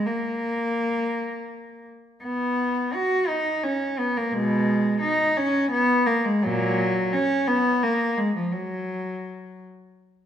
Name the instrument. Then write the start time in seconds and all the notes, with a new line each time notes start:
cello
0.06 A#3
2.23 B3
2.93 F#4
3.28 D#4
3.63 C#4
3.99 B3
4.17 A#3
4.32 B2 G#3
5.01 D#4
5.37 C#4
5.72 B3
6.06 A#3
6.25 G#3
6.43 A#2 F#3
7.13 C#4
7.47 B3
7.83 A#3
8.17 G#3
8.36 F3
8.53 F#3